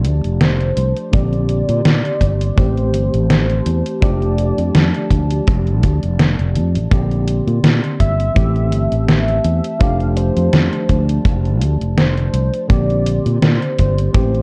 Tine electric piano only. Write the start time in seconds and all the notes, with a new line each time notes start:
Already playing: F3 A3 D4 G4
1.11 D3 A#3 C4 G4
2.56 E3 A3 C4 G4
4.01 F3 A3 D4 G4
6.90 D3 A#3 C4 G4
8.34 E3 A3 C4 G4
9.79 F3 A3 D4 G4
12.68 D3 A#3 C4 G4
14.13 E3 A3 C4 G4